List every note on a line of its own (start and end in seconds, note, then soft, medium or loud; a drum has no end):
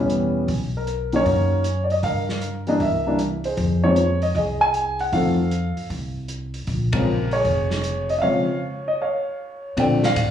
0.00 0.44 E1 medium
0.00 0.45 E3 medium
0.00 0.46 G3 medium
0.00 0.46 B3 soft
0.00 0.46 C#4 medium
0.10 closed hi-hat soft
0.48 1.22 B1 medium
0.48 kick soft
0.48 open hi-hat soft
0.77 1.11 A#4 medium
0.87 closed hi-hat soft
1.12 1.62 D#3 medium
1.12 1.62 F#3 medium
1.12 1.62 A#3 medium
1.12 1.63 C#4 medium
1.12 1.88 A#4 soft
1.12 1.81 C#5 medium
1.12 open hi-hat soft
1.25 1.99 F#2 medium
1.25 kick soft
1.25 open hi-hat soft
1.64 closed hi-hat soft
1.84 1.90 D5 medium
1.90 2.04 D#5 medium
1.90 open hi-hat soft
2.03 2.77 G2 medium
2.03 2.78 A#4 medium
2.03 2.40 F5 medium
2.03 kick soft
2.03 open hi-hat soft
2.29 snare soft
2.42 closed hi-hat soft
2.67 2.79 E3 medium
2.67 2.79 G3 medium
2.67 2.80 A#3 medium
2.67 2.80 D4 medium
2.67 2.81 D#5 medium
2.67 open hi-hat soft
2.80 3.54 C2 medium
2.80 3.55 A#4 medium
2.80 3.17 E5 medium
2.80 kick soft
2.80 open hi-hat soft
3.06 3.18 E3 medium
3.06 3.18 G3 soft
3.06 3.18 A#3 medium
3.06 3.19 D4 medium
3.19 closed hi-hat soft
3.44 4.19 G#4 soft
3.44 3.85 C5 medium
3.44 open hi-hat soft
3.57 4.31 F2 medium
3.57 kick soft
3.57 open hi-hat soft
3.84 3.96 D#3 medium
3.84 3.96 F3 medium
3.84 3.96 G#3 medium
3.84 3.96 C4 medium
3.84 4.23 C#5 medium
3.96 closed hi-hat soft
4.22 4.35 D#5 medium
4.22 open hi-hat soft
4.35 5.09 C2 medium
4.35 5.10 G#4 medium
4.35 4.60 D#5 medium
4.35 kick soft
4.35 open hi-hat soft
4.61 5.01 G#5 medium
4.74 closed hi-hat soft
4.99 5.14 F#5 medium
4.99 open hi-hat soft
5.12 5.73 F2 medium
5.12 5.36 D#3 soft
5.12 5.36 F3 soft
5.12 5.37 A3 soft
5.12 5.37 C4 medium
5.12 5.87 A4 medium
5.12 5.86 F5 medium
5.12 kick soft
5.12 open hi-hat soft
5.51 closed hi-hat soft
5.77 muted upright bass stroke soft
5.77 open hi-hat soft
5.90 6.64 C2 medium
5.90 kick soft
5.90 open hi-hat soft
6.28 closed hi-hat soft
6.54 open hi-hat soft
6.67 7.41 A#1 medium
6.67 kick soft
6.67 open hi-hat soft
6.93 7.05 C#3 medium
6.93 7.05 F3 medium
6.93 7.06 G#3 medium
6.93 7.06 C4 medium
6.93 7.33 A#4 medium
6.93 kick medium
6.93 ride medium
7.31 8.07 G#4 medium
7.31 8.06 C#5 medium
7.31 open hi-hat soft
7.44 8.18 F1 medium
7.44 kick soft
7.44 open hi-hat soft
7.71 snare soft
7.84 closed hi-hat soft
8.09 8.18 D#5 medium
8.09 open hi-hat soft
8.18 8.45 C#3 soft
8.18 8.23 E5 medium
8.18 8.58 F5 medium
8.23 8.46 F3 soft
8.23 8.46 G#3 soft
8.23 8.46 C4 soft
8.23 8.96 C#5 medium
8.88 8.99 D#5 medium
9.02 9.74 C#5 medium
9.02 9.37 F5 medium
9.77 10.14 A#2 medium
9.77 10.00 D3 medium
9.77 10.00 F3 soft
9.77 10.00 A3 soft
9.77 10.01 C4 medium
9.77 10.31 D5 medium
9.77 10.05 G5 medium
9.77 kick soft
9.77 ride medium
10.03 10.31 F5 loud
10.03 snare medium
10.16 10.31 A2 medium
10.16 kick soft
10.16 hi-hat pedal soft
10.16 ride medium